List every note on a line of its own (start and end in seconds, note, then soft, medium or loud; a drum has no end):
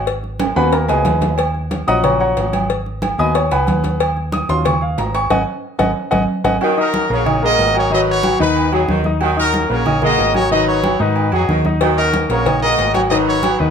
0.00 0.51 G#1 medium
0.07 cowbell loud
0.07 high conga soft
0.24 high conga soft
0.40 cowbell medium
0.40 high conga loud
0.40 high timbale medium
0.40 low agogo loud
0.56 0.87 D#2 medium
0.56 1.03 A#3 medium
0.56 1.03 B3 soft
0.56 1.03 F#4 medium
0.56 0.73 B4 medium
0.56 0.73 F#5 medium
0.56 0.73 G#5 medium
0.56 0.72 B5 loud
0.56 high conga soft
0.56 high timbale medium
0.72 0.89 A#4 medium
0.72 0.89 A#5 medium
0.72 cowbell loud
0.72 high conga soft
0.72 high timbale medium
0.72 low agogo medium
0.88 1.05 C#2 medium
0.88 1.35 G#4 medium
0.88 1.35 B4 medium
0.88 1.35 D#5 medium
0.88 1.35 G#5 medium
0.88 cowbell medium
0.88 high conga soft
0.88 low timbale medium
0.88 low agogo medium
1.05 1.82 D#2 medium
1.05 cowbell medium
1.05 high conga loud
1.05 low timbale loud
1.21 cowbell medium
1.21 high conga medium
1.21 low timbale medium
1.38 cowbell loud
1.38 high conga soft
1.38 low agogo loud
1.54 high conga soft
1.71 cowbell medium
1.71 high conga loud
1.71 low agogo medium
1.87 2.34 A#1 medium
1.87 2.66 F3 medium
1.87 2.65 F#3 medium
1.87 2.65 C#4 medium
1.87 2.04 D#5 loud
1.87 2.02 F#5 medium
1.87 2.02 A#5 medium
1.87 2.04 D#6 loud
1.87 cowbell medium
1.87 high conga soft
2.03 2.19 C#5 medium
2.03 2.19 F#5 medium
2.03 2.19 A#5 medium
2.03 2.19 C#6 medium
2.03 cowbell loud
2.03 high conga soft
2.03 low conga medium
2.03 low agogo loud
2.20 2.66 C#5 medium
2.20 2.66 F#5 medium
2.20 2.66 A#5 medium
2.20 2.66 C#6 medium
2.20 high conga soft
2.37 3.13 G#1 loud
2.37 cowbell medium
2.37 high conga soft
2.37 low timbale medium
2.37 low agogo medium
2.53 cowbell medium
2.53 high conga medium
2.53 low agogo loud
2.70 cowbell loud
2.70 high conga soft
2.86 high conga soft
3.02 cowbell medium
3.02 high conga medium
3.02 low agogo loud
3.18 3.49 D#2 medium
3.18 3.40 A#3 medium
3.18 3.41 B3 medium
3.18 3.41 F#4 medium
3.18 3.35 D#5 medium
3.18 3.35 G#5 loud
3.18 3.35 B5 medium
3.18 3.35 D#6 loud
3.18 high conga soft
3.34 3.51 C#5 medium
3.34 3.51 C#6 medium
3.34 cowbell loud
3.34 high conga soft
3.34 low agogo medium
3.51 3.67 C#2 medium
3.51 3.97 B4 medium
3.51 3.97 F#5 medium
3.51 3.97 G#5 medium
3.51 3.97 B5 loud
3.51 cowbell medium
3.51 high conga soft
3.51 low agogo loud
3.67 4.44 D#2 loud
3.67 cowbell medium
3.67 high conga loud
3.67 low timbale medium
3.84 cowbell medium
3.84 high conga medium
4.00 cowbell loud
4.00 high conga soft
4.00 low agogo loud
4.17 high conga soft
4.32 4.49 D#6 loud
4.32 cowbell medium
4.32 high conga loud
4.32 low agogo medium
4.49 4.95 D#2 medium
4.49 4.71 F#3 medium
4.49 4.71 C#4 medium
4.49 4.71 F4 medium
4.49 4.65 C6 loud
4.49 cowbell medium
4.49 high conga soft
4.65 4.81 C#6 loud
4.65 cowbell loud
4.65 high conga soft
4.65 low conga medium
4.65 low agogo loud
4.81 4.98 F5 medium
4.81 high conga soft
4.98 5.29 G#1 loud
4.98 5.14 A#5 medium
4.98 cowbell medium
4.98 high conga soft
4.98 low timbale medium
4.98 low agogo medium
5.15 5.31 C#6 loud
5.15 cowbell medium
5.15 low agogo loud
5.30 5.43 G#1 loud
5.30 5.41 D#5 medium
5.30 5.41 F#5 loud
5.30 5.41 G#5 loud
5.30 cowbell loud
5.30 high conga loud
5.30 high timbale loud
5.79 5.92 G#1 loud
5.79 5.90 D#5 loud
5.79 5.90 F#5 loud
5.79 5.90 G#5 medium
5.79 cowbell loud
5.79 high conga loud
5.79 high timbale loud
6.11 6.24 G#1 loud
6.11 6.22 D#5 loud
6.11 6.22 F#5 medium
6.11 6.22 G#5 medium
6.11 cowbell loud
6.11 high conga loud
6.11 high timbale medium
6.44 6.57 G#1 medium
6.44 6.55 D#5 loud
6.44 6.55 F#5 loud
6.44 6.55 G#5 loud
6.44 cowbell loud
6.44 high conga loud
6.44 high timbale loud
6.61 6.88 D#3 loud
6.61 6.75 F#3 medium
6.61 6.75 F#4 medium
6.61 6.75 F#5 medium
6.61 high conga soft
6.61 low agogo loud
6.77 7.40 C#4 medium
6.77 7.04 D#4 medium
6.77 7.11 F#4 medium
6.77 7.09 A#4 loud
6.77 7.04 D#5 medium
6.77 7.04 D#6 medium
6.77 high conga soft
6.94 high conga loud
6.94 low agogo medium
7.10 7.55 A#1 loud
7.10 7.28 C#3 medium
7.10 7.23 A#3 medium
7.10 7.43 F#4 medium
7.10 7.24 A#4 medium
7.10 7.43 A#4 medium
7.10 7.41 C#5 loud
7.10 7.24 A#5 medium
7.10 high conga soft
7.26 7.39 D#4 medium
7.26 7.39 D#5 medium
7.26 7.40 D#6 medium
7.26 high conga soft
7.26 low conga medium
7.26 low agogo loud
7.42 7.69 G#3 medium
7.42 7.69 A#3 medium
7.42 7.89 F#4 medium
7.42 7.69 A#4 medium
7.42 7.89 A#4 loud
7.42 7.74 D#5 loud
7.42 7.69 A#5 medium
7.42 high conga soft
7.59 8.34 G#1 loud
7.59 high conga soft
7.59 low timbale medium
7.59 low agogo medium
7.74 7.88 F#3 medium
7.74 7.88 F#4 medium
7.74 7.92 C#5 loud
7.74 7.88 F#5 medium
7.74 low agogo loud
7.91 8.17 D#3 medium
7.91 8.40 F#3 loud
7.91 8.18 D#4 medium
7.91 8.07 F#4 medium
7.91 8.39 B4 medium
7.91 8.18 D#5 medium
7.91 8.00 D#5 loud
7.91 high conga soft
8.08 8.39 F#4 medium
8.08 8.39 C#5 loud
8.08 high conga soft
8.23 8.37 F#3 medium
8.23 8.37 F#4 medium
8.23 8.37 F#5 medium
8.23 high conga loud
8.23 low agogo medium
8.39 8.86 D#2 loud
8.39 8.66 D#3 loud
8.39 8.67 D#4 loud
8.39 8.72 D#4 medium
8.39 9.01 F#4 medium
8.39 8.71 B4 loud
8.39 8.67 D#5 medium
8.39 high conga soft
8.56 high conga soft
8.56 low agogo medium
8.72 8.99 F#3 medium
8.72 8.81 F#3 medium
8.72 9.18 B3 medium
8.72 9.18 D#4 medium
8.72 8.99 F#4 medium
8.72 9.03 G#4 medium
8.72 8.99 F#5 medium
8.72 high conga soft
8.72 low agogo loud
8.88 9.64 D#2 loud
8.88 9.06 D#3 medium
8.88 high conga loud
9.04 9.18 D#4 medium
9.04 9.18 D#5 medium
9.04 9.19 D#6 medium
9.04 high conga medium
9.21 9.47 D#3 loud
9.21 9.34 F#3 medium
9.21 9.34 F#4 medium
9.21 9.35 F#5 medium
9.21 high conga soft
9.21 low agogo loud
9.37 9.99 C#4 medium
9.37 9.64 D#4 medium
9.37 9.69 F#4 medium
9.37 9.68 A#4 loud
9.37 9.64 D#5 medium
9.37 9.64 D#6 medium
9.37 high conga soft
9.53 high conga loud
9.53 low agogo medium
9.69 10.15 A#1 medium
9.69 9.87 C#3 medium
9.69 9.83 A#3 medium
9.69 10.02 F#4 medium
9.69 9.83 A#4 medium
9.69 10.02 A#4 medium
9.69 10.02 C#5 loud
9.69 9.83 A#5 medium
9.69 high conga soft
9.86 10.00 D#4 medium
9.86 9.99 D#5 medium
9.86 10.00 D#6 medium
9.86 high conga soft
9.86 low conga medium
9.86 low agogo loud
10.02 10.29 G#3 medium
10.02 10.29 A#3 medium
10.02 10.48 F#4 medium
10.02 10.29 A#4 medium
10.02 10.48 A#4 loud
10.02 10.33 D#5 loud
10.02 10.29 A#5 medium
10.02 high conga soft
10.02 low conga medium
10.18 10.94 G#1 medium
10.18 high conga soft
10.18 low timbale medium
10.18 low agogo medium
10.34 10.48 F#3 medium
10.34 10.49 F#4 medium
10.34 10.50 C#5 loud
10.34 10.49 F#5 medium
10.34 high conga medium
10.34 low agogo loud
10.50 10.78 D#3 medium
10.50 11.00 F#3 loud
10.50 10.78 D#4 loud
10.50 10.66 F#4 medium
10.50 10.99 B4 medium
10.50 10.66 D#5 loud
10.50 10.78 D#5 loud
10.50 high conga soft
10.66 10.99 F#4 medium
10.66 10.97 C#5 loud
10.66 high conga soft
10.84 10.97 F#3 medium
10.84 10.97 F#4 medium
10.84 10.97 F#5 medium
10.84 high conga loud
10.84 low agogo medium
11.00 11.30 G#2 loud
11.00 11.26 D#3 medium
11.00 11.27 D#4 loud
11.00 11.31 D#4 medium
11.00 11.61 F#4 medium
11.00 11.33 B4 medium
11.00 11.27 D#5 medium
11.00 high conga soft
11.16 high conga soft
11.16 low agogo medium
11.32 11.48 F2 medium
11.32 11.59 F#3 medium
11.32 11.42 F#3 medium
11.32 11.78 B3 medium
11.32 11.78 D#4 medium
11.32 11.59 F#4 medium
11.32 11.63 G#4 medium
11.32 11.60 F#5 medium
11.32 high conga soft
11.32 low agogo loud
11.49 12.24 D#2 loud
11.49 11.66 D#3 medium
11.49 high conga medium
11.65 11.79 D#4 medium
11.65 11.79 D#5 medium
11.65 11.79 D#6 medium
11.65 high conga medium
11.81 12.07 D#3 loud
11.81 11.95 F#3 medium
11.81 11.95 F#4 medium
11.81 11.95 F#5 medium
11.81 cowbell loud
11.81 high conga soft
11.81 low agogo loud
11.96 12.58 C#4 medium
11.96 12.24 D#4 medium
11.96 12.29 F#4 medium
11.96 12.27 A#4 loud
11.96 12.24 D#5 medium
11.96 12.25 D#6 medium
11.96 high conga soft
12.13 cowbell medium
12.13 high conga loud
12.13 low agogo medium
12.29 12.75 A#1 loud
12.29 12.47 C#3 medium
12.29 12.44 A#3 medium
12.29 12.62 F#4 medium
12.29 12.62 A#4 medium
12.29 12.44 A#4 medium
12.29 12.62 C#5 loud
12.29 12.44 A#5 medium
12.29 cowbell medium
12.29 high conga soft
12.46 12.60 D#4 medium
12.46 12.60 D#5 medium
12.46 12.60 D#6 medium
12.46 cowbell loud
12.46 high conga soft
12.46 low conga medium
12.46 low agogo loud
12.62 12.88 G#3 medium
12.62 12.89 A#3 medium
12.62 13.08 F#4 medium
12.62 12.89 A#4 medium
12.62 13.08 A#4 medium
12.62 12.92 D#5 loud
12.62 12.89 A#5 medium
12.62 high conga soft
12.78 13.54 G#1 medium
12.78 cowbell medium
12.78 high conga soft
12.78 low timbale medium
12.78 low agogo medium
12.93 13.08 F#3 medium
12.93 13.08 F#4 medium
12.93 13.01 C#5 loud
12.93 13.08 F#5 medium
12.93 cowbell medium
12.93 high conga medium
12.93 low agogo loud
13.09 13.38 D#3 medium
13.09 13.60 F#3 loud
13.09 13.38 D#4 medium
13.09 13.27 F#4 medium
13.09 13.57 B4 medium
13.09 13.17 D#5 loud
13.09 13.38 D#5 medium
13.09 cowbell loud
13.09 high conga soft
13.26 13.58 F#4 medium
13.26 13.57 C#5 loud
13.26 high conga soft
13.43 13.56 F#3 medium
13.43 13.57 F#4 medium
13.43 13.57 F#5 medium
13.43 cowbell medium
13.43 high conga medium
13.43 low agogo loud
13.58 13.70 D#2 medium
13.58 13.70 D#3 medium
13.58 13.70 D#4 medium
13.58 13.70 F#4 medium
13.58 13.70 B4 loud
13.58 13.70 D#5 loud
13.58 high conga soft